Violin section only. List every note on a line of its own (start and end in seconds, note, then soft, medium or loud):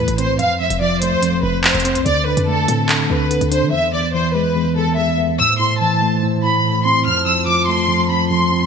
0.00 0.16 B4 medium
0.18 0.37 C5 medium
0.40 0.58 F5 loud
0.60 0.78 E5 medium
0.81 0.99 D5 medium
1.02 1.41 C5 medium
1.43 1.62 B4 medium
1.64 2.03 C5 medium
2.06 2.24 D5 loud
2.27 2.45 B4 medium
2.47 2.87 A4 medium
3.10 3.49 B4 medium
3.52 3.70 C5 medium
3.72 3.91 E5 medium
3.93 4.12 D5 medium
4.14 4.32 C5 medium
4.34 4.74 B4 medium
4.77 4.95 A4 medium
4.97 5.15 E5 medium
5.39 5.58 E6 loud
5.60 5.78 C6 medium
5.81 6.20 A5 medium
6.44 6.83 B5 medium
6.85 7.03 C6 medium
7.06 7.24 F6 loud
7.27 7.45 E6 medium
7.47 7.66 D6 loud
7.68 8.07 C6 medium
8.10 8.28 B5 medium
8.31 8.66 C6 medium